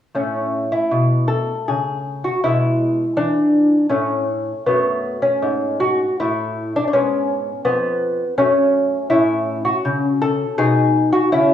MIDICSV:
0, 0, Header, 1, 2, 480
1, 0, Start_track
1, 0, Key_signature, 3, "major"
1, 0, Tempo, 760456
1, 95, Time_signature, 3, 2, 24, 8
1, 1533, Tempo, 747198
1, 3933, Tempo, 734394
1, 7446, End_track
2, 0, Start_track
2, 0, Title_t, "Lute"
2, 0, Program_c, 0, 24
2, 91, Note_on_c, 0, 45, 50
2, 95, Note_on_c, 0, 57, 35
2, 96, Note_on_c, 0, 61, 62
2, 444, Note_off_c, 0, 61, 0
2, 454, Note_on_c, 0, 64, 55
2, 479, Note_off_c, 0, 45, 0
2, 577, Note_on_c, 0, 47, 46
2, 801, Note_off_c, 0, 64, 0
2, 807, Note_on_c, 0, 69, 64
2, 962, Note_off_c, 0, 47, 0
2, 1043, Note_off_c, 0, 69, 0
2, 1061, Note_on_c, 0, 68, 63
2, 1067, Note_on_c, 0, 49, 45
2, 1403, Note_off_c, 0, 68, 0
2, 1416, Note_on_c, 0, 66, 59
2, 1444, Note_off_c, 0, 49, 0
2, 1508, Note_off_c, 0, 57, 0
2, 1534, Note_off_c, 0, 66, 0
2, 1538, Note_on_c, 0, 64, 66
2, 1547, Note_on_c, 0, 47, 46
2, 1549, Note_on_c, 0, 56, 37
2, 1925, Note_off_c, 0, 47, 0
2, 1995, Note_off_c, 0, 64, 0
2, 2007, Note_on_c, 0, 52, 53
2, 2007, Note_on_c, 0, 62, 61
2, 2389, Note_off_c, 0, 52, 0
2, 2465, Note_off_c, 0, 62, 0
2, 2468, Note_off_c, 0, 56, 0
2, 2476, Note_on_c, 0, 61, 58
2, 2481, Note_on_c, 0, 45, 49
2, 2482, Note_on_c, 0, 57, 34
2, 2868, Note_off_c, 0, 45, 0
2, 2939, Note_off_c, 0, 57, 0
2, 2942, Note_off_c, 0, 61, 0
2, 2968, Note_on_c, 0, 59, 72
2, 2972, Note_on_c, 0, 42, 53
2, 2978, Note_on_c, 0, 57, 38
2, 3316, Note_off_c, 0, 59, 0
2, 3326, Note_on_c, 0, 61, 55
2, 3358, Note_off_c, 0, 42, 0
2, 3456, Note_on_c, 0, 44, 52
2, 3677, Note_off_c, 0, 61, 0
2, 3699, Note_on_c, 0, 66, 67
2, 3841, Note_off_c, 0, 44, 0
2, 3928, Note_off_c, 0, 66, 0
2, 3956, Note_on_c, 0, 64, 73
2, 3963, Note_on_c, 0, 45, 47
2, 4294, Note_off_c, 0, 64, 0
2, 4322, Note_on_c, 0, 62, 66
2, 4339, Note_off_c, 0, 45, 0
2, 4386, Note_off_c, 0, 62, 0
2, 4398, Note_off_c, 0, 57, 0
2, 4398, Note_on_c, 0, 62, 51
2, 4431, Note_off_c, 0, 62, 0
2, 4435, Note_on_c, 0, 61, 70
2, 4440, Note_on_c, 0, 44, 56
2, 4446, Note_on_c, 0, 59, 36
2, 4816, Note_off_c, 0, 44, 0
2, 4888, Note_off_c, 0, 61, 0
2, 4895, Note_off_c, 0, 59, 0
2, 4903, Note_on_c, 0, 59, 70
2, 4909, Note_on_c, 0, 41, 53
2, 5285, Note_off_c, 0, 41, 0
2, 5357, Note_off_c, 0, 59, 0
2, 5380, Note_on_c, 0, 61, 69
2, 5381, Note_on_c, 0, 57, 41
2, 5390, Note_on_c, 0, 42, 50
2, 5767, Note_off_c, 0, 42, 0
2, 5830, Note_off_c, 0, 57, 0
2, 5837, Note_off_c, 0, 61, 0
2, 5851, Note_on_c, 0, 64, 83
2, 5854, Note_on_c, 0, 45, 59
2, 5860, Note_on_c, 0, 61, 41
2, 6199, Note_off_c, 0, 64, 0
2, 6210, Note_on_c, 0, 66, 70
2, 6240, Note_off_c, 0, 45, 0
2, 6342, Note_on_c, 0, 49, 59
2, 6559, Note_off_c, 0, 66, 0
2, 6582, Note_on_c, 0, 69, 83
2, 6723, Note_off_c, 0, 49, 0
2, 6793, Note_off_c, 0, 61, 0
2, 6809, Note_off_c, 0, 69, 0
2, 6819, Note_on_c, 0, 68, 83
2, 6822, Note_on_c, 0, 47, 60
2, 6824, Note_on_c, 0, 63, 44
2, 7161, Note_off_c, 0, 68, 0
2, 7173, Note_on_c, 0, 66, 75
2, 7203, Note_off_c, 0, 47, 0
2, 7271, Note_off_c, 0, 63, 0
2, 7294, Note_off_c, 0, 66, 0
2, 7301, Note_on_c, 0, 61, 42
2, 7302, Note_on_c, 0, 64, 81
2, 7304, Note_on_c, 0, 49, 64
2, 7446, Note_off_c, 0, 49, 0
2, 7446, Note_off_c, 0, 61, 0
2, 7446, Note_off_c, 0, 64, 0
2, 7446, End_track
0, 0, End_of_file